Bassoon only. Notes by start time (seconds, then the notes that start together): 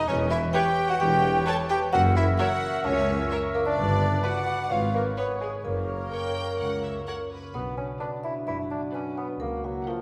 0.08 C#4
0.31 E4
0.54 G4
0.91 F#4
1.01 G4
1.47 A4
1.71 G4
1.93 F#4
2.17 E4
2.39 F#4
2.86 C#4
3.54 A#3
3.66 D4
4.23 F#4
4.70 F4
4.94 A#3
5.18 B3
5.41 G#3
5.64 A#3
7.55 B3
7.78 C#4
8.00 D4
8.24 E4
8.48 E4
8.71 D4
8.94 C#4
9.18 B3
9.41 A#3
9.65 F#3
9.88 F3